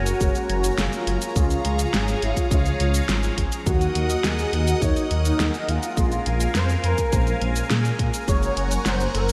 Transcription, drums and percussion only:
0.06 closed hi-hat, cabasa
0.21 kick, closed hi-hat, cabasa
0.35 closed hi-hat, cabasa
0.50 closed hi-hat
0.64 closed hi-hat, cabasa
0.78 snare, closed hi-hat, cabasa
0.93 closed hi-hat, cabasa
1.07 closed hi-hat
1.22 closed hi-hat, cabasa
1.36 kick, closed hi-hat, cabasa
1.50 closed hi-hat, cabasa
1.65 closed hi-hat
1.79 closed hi-hat, cabasa
1.94 snare, closed hi-hat, cabasa
2.08 closed hi-hat, cabasa
2.22 closed hi-hat
2.37 kick, closed hi-hat, cabasa
2.51 kick, closed hi-hat, cabasa
2.66 closed hi-hat, cabasa
2.80 closed hi-hat
2.94 closed hi-hat, cabasa
3.09 snare, closed hi-hat, cabasa
3.23 closed hi-hat, cabasa
3.38 kick, closed hi-hat
3.52 closed hi-hat, cabasa
3.66 kick, closed hi-hat, cabasa
3.81 closed hi-hat, cabasa
3.95 closed hi-hat
4.10 closed hi-hat, cabasa
4.24 snare, closed hi-hat, cabasa
4.39 closed hi-hat, cabasa
4.53 closed hi-hat
4.68 closed hi-hat, cabasa
4.82 kick, closed hi-hat, cabasa
4.96 closed hi-hat, cabasa
5.11 closed hi-hat
5.25 closed hi-hat, cabasa
5.40 snare, closed hi-hat, cabasa
5.54 closed hi-hat, cabasa
5.69 closed hi-hat
5.83 closed hi-hat, cabasa
5.97 kick, closed hi-hat, cabasa
6.12 closed hi-hat, cabasa
6.26 closed hi-hat
6.40 closed hi-hat, cabasa
6.55 snare, closed hi-hat, cabasa
6.69 closed hi-hat, cabasa
6.84 closed hi-hat
6.98 kick, closed hi-hat, cabasa
7.13 kick, closed hi-hat, cabasa
7.27 closed hi-hat, cabasa
7.42 closed hi-hat
7.56 closed hi-hat, cabasa
7.70 snare, closed hi-hat, cabasa
7.85 closed hi-hat, cabasa
7.99 kick, closed hi-hat
8.14 closed hi-hat, cabasa
8.28 kick, closed hi-hat, cabasa
8.43 closed hi-hat, cabasa
8.57 closed hi-hat
8.71 closed hi-hat, cabasa
8.86 snare, closed hi-hat, cabasa
9.00 closed hi-hat, cabasa
9.15 closed hi-hat

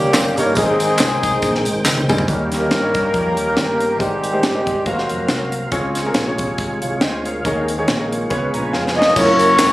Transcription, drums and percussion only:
0.14 snare, clap, closed hi-hat, tambourine
0.37 closed hi-hat, tambourine
0.55 kick, closed hi-hat, tambourine
0.80 closed hi-hat, tambourine
0.98 snare, clap, closed hi-hat, tambourine
1.23 kick, closed hi-hat, tambourine
1.42 kick, closed hi-hat, tambourine
1.55 snare
1.65 closed hi-hat, tambourine
1.85 snare, clap, tambourine
1.97 high tom
2.09 mid tom, tambourine
2.18 floor tom
2.28 kick, closed hi-hat
2.52 snare, closed hi-hat
2.71 snare, closed hi-hat
2.95 kick, closed hi-hat
3.14 kick, closed hi-hat
3.37 closed hi-hat
3.57 snare, closed hi-hat
3.80 closed hi-hat
4.00 kick, closed hi-hat
4.24 closed hi-hat
4.43 snare, closed hi-hat
4.67 kick, closed hi-hat
4.86 kick, closed hi-hat
4.98 snare
5.09 closed hi-hat
5.29 snare, closed hi-hat
5.52 closed hi-hat
5.72 kick, closed hi-hat
5.95 snare, closed hi-hat
6.14 snare, closed hi-hat
6.38 kick, closed hi-hat
6.58 kick, closed hi-hat
6.82 closed hi-hat
7.01 snare, closed hi-hat
7.25 closed hi-hat
7.45 kick, closed hi-hat
7.68 closed hi-hat
7.88 snare, closed hi-hat
8.12 closed hi-hat
8.30 kick, closed hi-hat
8.54 closed hi-hat
8.73 snare
8.87 snare
9.02 snare
9.16 kick, crash, tambourine
9.39 closed hi-hat, tambourine
9.59 snare, clap, closed hi-hat, tambourine

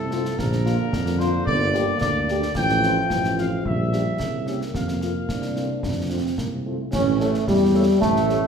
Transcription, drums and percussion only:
0.11 snare
0.25 snare
0.39 concert bass drum, snare
0.52 snare
0.66 snare
0.93 concert bass drum, snare
1.06 snare
1.20 snare
1.47 concert bass drum
1.74 snare
2.01 concert bass drum, snare
2.28 snare
2.42 snare
2.55 concert bass drum, snare, crash
2.69 snare
2.83 snare
3.10 concert bass drum, snare
3.24 snare
3.38 snare
3.65 concert bass drum
3.93 snare
4.20 concert bass drum, snare
4.47 snare
4.61 snare
4.75 concert bass drum, snare
4.88 snare
5.01 snare
5.29 concert bass drum, snare
5.42 snare
5.56 snare
5.83 concert bass drum, snare
6.38 concert bass drum, snare
6.93 concert bass drum, snare, crash
7.20 snare
7.34 snare
7.47 concert bass drum, snare
8.02 concert bass drum, snare
8.16 snare
8.29 snare

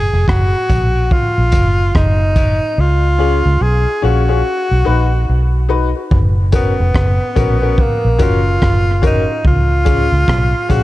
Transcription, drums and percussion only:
0.28 kick, cross-stick
0.70 kick, closed hi-hat
1.11 kick
1.52 kick, closed hi-hat
1.95 kick, cross-stick
2.36 kick, closed hi-hat
6.11 kick
6.52 kick, closed hi-hat
6.94 kick, cross-stick
7.36 kick, closed hi-hat
7.78 kick
8.19 kick, closed hi-hat
8.62 kick, cross-stick
9.03 kick, closed hi-hat
9.45 kick
9.86 kick, closed hi-hat
10.28 kick, cross-stick
10.70 kick, closed hi-hat

